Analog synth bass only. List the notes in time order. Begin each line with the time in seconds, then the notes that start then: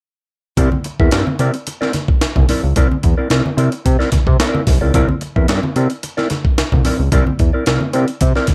0.57 C2
1.00 E2
1.12 G2
1.39 C3
2.21 C2
2.36 C2
2.63 C#2
2.76 C2
3.04 E2
3.30 C2
3.57 C3
3.86 C3
4.12 C3
4.27 C3
4.67 C2
4.81 C#2
4.94 C2
5.36 E2
5.49 G2
5.76 C3
6.58 C2
6.72 C2
6.99 C#2
7.12 C2
7.40 E2
7.67 C2
7.94 C3
8.22 C3
8.48 C3